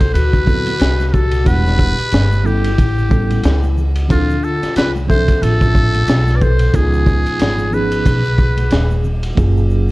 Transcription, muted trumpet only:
Already playing: C5
0.14 B4
1.08 B4
1.13 A4
1.47 B4
2.46 G4
4.11 F4
4.44 A4
4.77 B4
5.09 C5
5.43 A4
6.36 D5
6.42 C5
6.75 G#4
7.74 B4

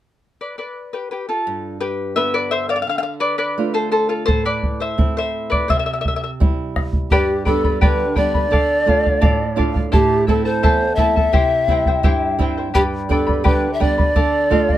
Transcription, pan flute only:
7.11 G4
7.46 A4
7.83 B4
8.18 D5
9.93 G4
10.28 A4
10.45 C5
10.95 E5
12.75 G4
13.09 A4
13.46 B4
13.73 E5
13.82 D5

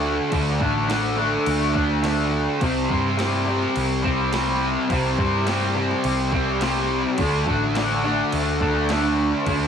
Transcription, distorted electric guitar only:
Already playing: D3 A3 D4
0.31 D3 A3 D4
0.60 A3 D4
0.89 D3 A3 D4
1.17 A3 D4
1.74 A3 D4
2.03 D3 A3 D4
2.61 C3 G3 C4
2.88 G3 C4
3.17 C3 G3 C4
3.46 G3 C4
4.03 G3 C4
4.32 C3 G3 C4
4.89 C3 G3 C4
5.18 G3 C4
5.46 C3 G3 C4
5.75 G3 C4
6.32 G3 C4
6.61 C3 G3 C4
7.18 D3 A3 D4
7.46 A3 D4
7.75 D3 A3 D4
8.04 A3 D4
8.61 A3 D4
8.89 D3 A3 D4
9.46 D3 A3 D4

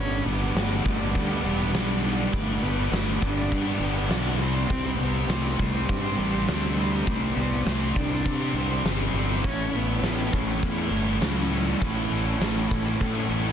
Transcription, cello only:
0.00 C#4
0.25 B3
0.56 A3
0.85 A3
1.15 G3
1.45 G3
2.34 A3
2.62 B3
2.93 A3
3.23 D4
4.69 C4
4.99 B3
5.28 A3
5.56 A3
5.83 G3
6.14 G3
7.03 A3
7.34 B3
7.64 A3
7.94 D4
9.44 C#4
9.75 B3
10.34 A3
10.63 A3
11.24 F#3
11.69 G3
11.84 A3

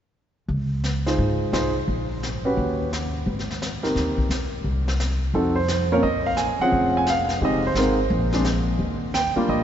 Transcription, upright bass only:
0.48 C#2
1.18 G#2
1.53 C2
1.88 A#1
2.57 D#2
3.26 G#1
3.95 D#2
4.29 B1
4.64 C2
5.34 F2
6.03 A#1
6.59 muted upright bass stroke
6.72 F1
7.41 F1
7.74 G#1
8.10 A#1
8.79 D#2
9.36 muted upright bass stroke
9.49 A#1

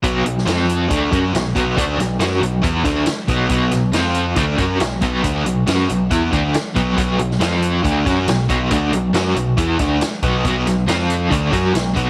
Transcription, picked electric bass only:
0.04 B1
0.24 B1
0.46 F2
0.90 D2
1.12 F#2
1.34 B1
1.56 B1
1.78 D2
1.98 B1
2.19 F#2
2.41 B1
2.64 E2
2.85 D2
3.28 B1
3.50 B1
3.71 B1
3.92 F2
4.37 D2
4.58 F#2
4.80 B1
5.02 B1
5.23 D2
5.45 B1
5.67 F#2
5.89 B1
6.11 E2
6.32 D2
6.76 B1
6.97 B1
7.20 B1
7.40 F2
7.84 D2
8.06 F#2
8.27 B1
8.49 B1
8.71 D2
8.91 B1
9.13 F#2
9.35 B1
9.58 E2
9.80 D2
10.23 B1
10.45 B1
10.66 B1
10.87 F2
11.31 D2
11.52 F#2
11.74 B1
11.96 B1

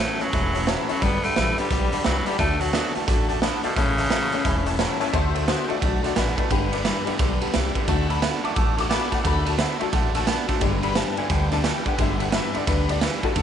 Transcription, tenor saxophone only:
Already playing: A3
0.22 F#3
0.69 E3
0.90 F#3
1.03 B3
1.24 A3
1.58 G3
2.05 F#3
2.27 G3
2.39 A3
2.60 F#3
2.95 E3
3.07 D3
3.64 B2
3.76 C#3

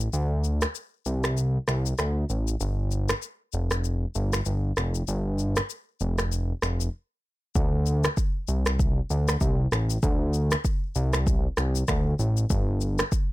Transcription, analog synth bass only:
0.13 D2
1.06 C2
1.68 C2
1.99 D2
2.30 A1
2.61 G1
3.54 F1
4.15 G1
4.46 G1
4.77 F1
5.08 G1
6.01 F1
6.63 F1
7.55 D2
8.48 C2
9.10 D2
9.41 C2
9.72 A1
10.03 D2
10.96 C2
11.58 C2
11.88 D2
12.19 A1
12.50 G1

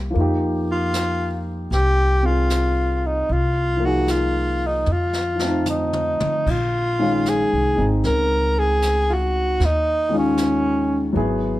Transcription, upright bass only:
Already playing: C2
0.15 F2
1.71 C2
3.29 C2
4.87 F2
6.21 muted upright bass stroke
6.47 A#1
7.53 C2
7.78 G#1
8.04 C#2
9.60 D#2
11.16 G#1

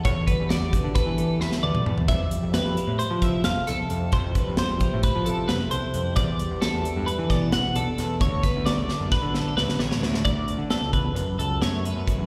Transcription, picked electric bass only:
0.05 E2
0.40 E2
0.61 E2
0.84 D3
1.06 E3
1.40 E2
1.63 E2
1.86 E2
2.09 F2
2.43 F2
2.65 F2
2.87 A2
3.10 F3
3.45 F2
3.68 C2
3.91 F2
4.12 F2
4.47 F2
4.70 F2
4.93 A2
5.15 F3
5.49 F2
5.72 C2
5.95 F2
6.17 E2
6.51 E2
6.74 E2
6.96 G2
7.18 E3
7.52 E2
7.75 B1
7.98 E2
8.20 D2
8.56 D2
8.77 D2
9.00 F#2
9.22 D3
9.56 D2
9.79 A1
10.01 D2
10.25 D2
10.58 D3
10.81 C#2
11.15 F#2
11.38 C#2
11.61 F#2
11.96 F#2
12.19 E2

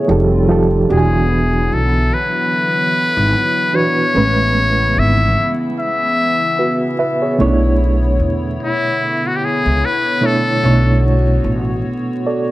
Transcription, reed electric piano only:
Already playing: G#4 A4 B4 C#5 D5 E5
0.08 F3 D#4 G4 A4
0.49 F3 D#4 G4 A4
0.88 E3 D4 F#4 G4
0.97 G#5
3.73 E3 D4 F#4 B4
4.15 G#3 A3 C#4 B4
6.59 F#4 B4
6.99 B4 E5
7.22 G#4 C#5
7.38 B2 A3 C#4 E4 C#5
10.21 B2 A3 D4 E4 C#5
10.63 B2 A3 D4 E4 C#5
12.26 A4 D5

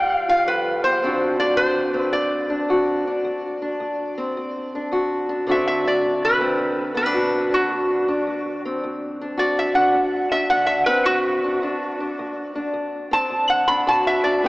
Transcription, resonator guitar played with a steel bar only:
Already playing: G5
0.15 F5
0.29 F5
0.48 B4
0.84 C5
1.40 D5
1.57 C5
1.99 B4
2.13 D5
5.51 E5
5.67 E5
5.87 D5
6.25 B4
6.97 B4
7.54 F#4
9.39 D5
9.59 E5
9.75 F#5
10.32 E5
10.50 F#5
10.66 E5
10.86 B4
11.06 F#4
13.13 A5
13.50 F#5
13.68 B5
13.88 A5
14.07 E5
14.24 D5

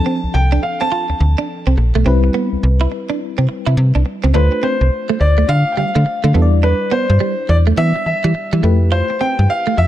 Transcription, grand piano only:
Already playing: A5
0.34 G5
0.63 F5
0.81 A5
4.35 B4
4.63 C5
5.21 D5
5.49 F5
5.72 G5
5.78 F5
6.64 B4
6.92 C5
7.49 D5
7.78 E5
8.06 E5
8.92 C5
9.21 G5
9.50 F5
9.78 E5

